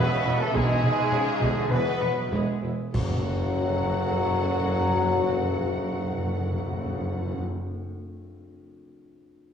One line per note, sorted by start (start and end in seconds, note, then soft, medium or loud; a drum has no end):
0.00 0.39 B2 loud
0.00 0.55 C#3 loud
0.00 0.40 B3 loud
0.00 0.24 G#4 loud
0.00 0.40 B4 loud
0.00 0.42 B4 loud
0.00 2.70 E5 loud
0.26 0.37 E1 medium
0.26 0.34 E1 medium
0.26 0.34 E4 medium
0.40 0.55 A2 loud
0.40 0.55 A3 loud
0.40 0.54 A4 loud
0.40 0.56 A4 loud
0.40 0.55 A4 loud
0.53 0.66 E1 loud
0.53 0.62 E1 loud
0.53 1.72 G#2 loud
0.53 1.11 B2 loud
0.53 1.52 G#3 loud
0.53 1.71 G#4 loud
0.53 0.81 G#4 loud
0.53 1.40 G#4 loud
0.53 1.68 G#4 loud
0.53 1.71 G#4 loud
0.53 taiko loud
0.83 taiko mid medium
1.12 1.41 C#3 loud
1.12 taiko mid medium
1.40 1.52 E1 loud
1.40 1.49 E1 loud
1.40 1.71 D3 loud
1.40 1.69 G#4 loud
1.40 taiko loud
1.69 1.82 E1 medium
1.69 1.79 E1 medium
1.69 2.32 B2 loud
1.69 2.01 E3 loud
1.69 2.29 B3 loud
1.69 1.78 E4 medium
1.69 2.31 B4 loud
1.69 2.27 B4 loud
1.69 2.30 B4 loud
1.69 2.31 B4 loud
1.69 taiko mid medium
2.00 2.12 E1 medium
2.00 2.09 E1 medium
2.00 2.32 F#3 medium
2.00 2.08 B3 medium
2.00 taiko rim soft
2.31 2.43 E1 loud
2.31 2.40 E1 loud
2.31 2.62 G#3 medium
2.31 2.61 G#4 loud
2.31 taiko medium
2.61 2.74 E1 medium
2.61 2.71 E1 medium
2.61 2.70 E4 medium
2.93 7.40 F#1 medium
2.93 7.41 F#1 loud
2.93 3.01 F#2 loud
2.93 7.42 F#2 medium
2.93 7.40 F#3 loud
2.93 7.41 F#3 loud
2.93 7.41 F#4 medium
2.93 7.41 A4 medium
2.93 7.40 F#5 loud
2.93 7.41 F#5 medium
2.93 concert bass drum medium
2.93 taiko loud
2.93 crash medium
3.01 3.08 F#2 medium
3.08 3.14 F#2 loud
3.14 3.21 F#2 loud
3.21 3.28 F#2 loud
3.28 3.35 F#2 medium
3.35 3.42 F#2 medium
3.42 3.48 F#2 loud
3.48 3.55 F#2 loud
3.55 3.62 F#2 loud
3.62 3.69 F#2 loud
3.70 3.76 F#2 medium
3.76 3.83 F#2 medium
3.83 3.90 F#2 medium
3.90 3.96 F#2 medium
3.96 4.03 F#2 medium
4.03 4.10 F#2 medium
4.10 4.17 F#2 medium
4.17 4.24 F#2 loud
4.24 4.31 F#2 medium
4.31 4.38 F#2 loud
4.39 4.45 F#2 medium
4.45 4.52 F#2 medium
4.52 4.59 F#2 loud
4.59 4.66 F#2 medium
4.66 4.73 F#2 medium
4.73 4.80 F#2 loud
4.80 4.87 F#2 loud
4.87 4.94 F#2 loud
4.94 5.00 F#2 medium
5.00 5.07 F#2 loud
5.07 5.14 F#2 medium
5.15 5.21 F#2 loud
5.22 5.28 F#2 medium
5.28 5.35 F#2 loud
5.35 5.42 F#2 medium
5.42 5.49 F#2 medium
5.49 5.56 F#2 medium
5.56 5.62 F#2 loud
5.63 5.69 F#2 medium
5.69 5.76 F#2 medium
5.76 5.83 F#2 medium
5.83 5.89 F#2 loud
5.89 5.96 F#2 medium
5.96 6.03 F#2 medium
6.03 6.10 F#2 medium
6.10 6.17 F#2 medium
6.17 6.24 F#2 medium
6.24 6.30 F#2 medium
6.30 6.37 F#2 medium
6.37 6.44 F#2 loud
6.44 6.51 F#2 medium
6.51 6.57 F#2 loud
6.57 6.64 F#2 medium
6.64 6.71 F#2 loud
6.71 6.78 F#2 loud
6.78 6.85 F#2 loud
6.85 6.92 F#2 medium
6.92 6.99 F#2 loud
6.99 7.05 F#2 medium
7.05 7.12 F#2 loud
7.12 7.18 F#2 medium
7.18 7.25 F#2 medium
7.25 7.32 F#2 loud
7.32 7.39 F#2 loud
7.39 7.46 F#2 loud